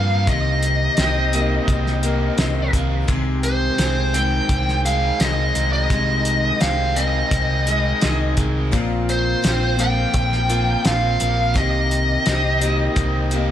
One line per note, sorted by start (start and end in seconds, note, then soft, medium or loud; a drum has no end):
0.00 0.29 G2 medium
0.00 0.28 F3 medium
0.00 0.27 A#3 medium
0.00 0.28 A#3 medium
0.00 0.28 C4 medium
0.00 0.97 C4 medium
0.00 0.29 F4 medium
0.00 0.31 F5 medium
0.27 0.87 C2 medium
0.27 0.98 C3 medium
0.27 0.98 D#3 medium
0.27 0.98 A#3 medium
0.27 1.00 C4 medium
0.27 0.99 G4 medium
0.27 2.71 D#5 medium
0.27 kick medium
0.27 closed hi-hat medium
0.63 closed hi-hat medium
0.97 1.58 C2 medium
0.97 1.34 D#3 medium
0.97 1.33 A#3 medium
0.97 1.32 C4 medium
0.97 snare loud
0.97 closed hi-hat medium
1.01 1.31 G4 medium
1.32 2.39 D#3 medium
1.32 2.04 A#3 soft
1.32 2.05 C4 medium
1.32 2.03 G4 medium
1.32 closed hi-hat medium
1.68 2.28 C2 medium
1.68 3.80 C4 medium
1.68 kick medium
1.68 closed hi-hat medium
1.87 snare soft
2.03 2.39 A#3 soft
2.03 2.38 C4 medium
2.03 2.39 G4 medium
2.03 closed hi-hat medium
2.38 2.69 C2 medium
2.38 3.07 D#3 medium
2.38 3.08 A#3 medium
2.38 3.09 C4 medium
2.38 3.09 G4 medium
2.38 snare loud
2.38 closed hi-hat medium
2.73 3.04 C2 medium
2.73 3.10 A#3 medium
2.73 kick medium
2.73 closed hi-hat medium
3.08 3.69 C2 medium
3.08 3.79 C3 medium
3.08 3.78 D#3 medium
3.08 3.79 G#3 medium
3.08 3.80 C4 medium
3.08 3.80 G#4 medium
3.08 kick medium
3.08 closed hi-hat medium
3.43 4.17 C5 medium
3.43 closed hi-hat soft
3.78 4.39 C2 medium
3.78 4.15 D#3 medium
3.78 4.15 G#3 medium
3.78 4.16 C4 medium
3.78 4.14 G#4 medium
3.78 snare medium
3.78 closed hi-hat medium
4.14 5.19 D#3 medium
4.14 4.86 G#3 soft
4.14 4.86 C4 soft
4.14 4.84 G#4 medium
4.14 4.81 G5 loud
4.14 closed hi-hat medium
4.49 5.10 C2 medium
4.49 6.61 C4 medium
4.49 kick medium
4.49 closed hi-hat medium
4.68 snare soft
4.85 5.21 G#3 soft
4.85 5.21 C4 soft
4.85 5.21 G#4 soft
4.85 5.22 F5 medium
4.85 closed hi-hat medium
5.20 5.51 C2 medium
5.20 5.90 D#3 medium
5.20 5.90 G#3 medium
5.20 5.92 C4 medium
5.20 5.72 D#5 medium
5.20 snare loud
5.20 closed hi-hat medium
5.24 5.91 G#4 medium
5.55 5.86 C2 medium
5.55 7.32 G#3 medium
5.55 closed hi-hat medium
5.73 6.64 D#5 medium
5.90 6.51 C2 medium
5.90 6.62 C3 medium
5.90 6.59 D#3 medium
5.90 6.59 G#3 medium
5.90 6.60 C4 medium
5.90 6.61 G#4 medium
5.90 kick medium
5.90 closed hi-hat medium
6.25 closed hi-hat medium
6.60 7.22 C2 medium
6.60 6.96 D#3 medium
6.60 6.96 G#3 medium
6.60 6.96 C4 medium
6.60 6.96 G#4 medium
6.60 6.98 F5 medium
6.60 snare medium
6.60 closed hi-hat medium
6.96 8.01 D#3 medium
6.96 7.67 G#3 soft
6.96 7.67 C4 soft
6.96 7.64 G#4 soft
6.96 8.34 D#5 medium
6.96 closed hi-hat medium
7.31 7.92 C2 medium
7.31 8.76 C4 soft
7.31 kick medium
7.31 closed hi-hat medium
7.66 8.02 G#3 soft
7.66 8.02 C4 soft
7.66 8.02 G#4 soft
7.66 closed hi-hat medium
8.01 8.33 C2 medium
8.01 8.72 D#3 medium
8.01 8.72 G#3 medium
8.01 8.72 C4 medium
8.01 8.73 G#4 medium
8.01 snare loud
8.01 closed hi-hat medium
8.37 8.74 C2 medium
8.37 8.73 G#3 medium
8.37 kick medium
8.37 closed hi-hat medium
8.72 9.33 A#1 medium
8.72 9.43 A#2 medium
8.72 9.41 F3 medium
8.72 9.43 A#3 medium
8.72 9.44 C4 medium
8.72 9.44 F4 medium
8.72 kick medium
8.72 closed hi-hat medium
9.09 9.82 C5 medium
9.09 closed hi-hat soft
9.43 10.05 A#1 medium
9.43 9.79 F3 medium
9.43 9.77 A#3 medium
9.43 9.77 C4 medium
9.43 9.76 F4 medium
9.43 snare loud
9.43 closed hi-hat medium
9.77 10.83 F3 medium
9.77 10.50 A#3 soft
9.77 10.49 C4 soft
9.77 10.48 F4 soft
9.77 10.87 G5 medium
9.77 closed hi-hat medium
10.14 10.74 A#1 medium
10.14 12.26 C4 medium
10.14 kick medium
10.14 closed hi-hat medium
10.32 snare soft
10.49 10.84 A#3 soft
10.49 10.85 C4 soft
10.49 10.85 F4 medium
10.49 closed hi-hat medium
10.85 11.16 A#1 medium
10.85 11.54 F3 medium
10.85 11.54 A#3 medium
10.85 11.55 C4 medium
10.85 11.55 F4 medium
10.85 11.59 F5 medium
10.85 snare loud
10.85 closed hi-hat medium
11.19 11.56 A#1 medium
11.19 11.55 A#3 medium
11.19 closed hi-hat medium
11.54 12.16 C2 medium
11.54 12.26 C3 medium
11.54 12.24 D#3 medium
11.54 12.26 A#3 medium
11.54 12.27 C4 medium
11.54 12.27 G4 medium
11.54 13.51 D#5 medium
11.54 kick medium
11.54 closed hi-hat medium
11.91 closed hi-hat medium
12.26 12.87 C2 medium
12.26 12.62 D#3 medium
12.26 12.62 A#3 medium
12.26 12.61 C4 medium
12.26 12.60 G4 medium
12.26 snare medium
12.26 closed hi-hat medium
12.61 13.51 D#3 medium
12.61 13.33 A#3 soft
12.61 13.34 C4 soft
12.61 13.32 G4 medium
12.61 closed hi-hat medium
12.96 13.51 C2 medium
12.96 13.51 C4 medium
12.96 kick medium
12.96 closed hi-hat medium
13.31 13.51 C4 medium
13.31 13.51 G4 medium
13.31 closed hi-hat medium
13.35 13.51 A#3 soft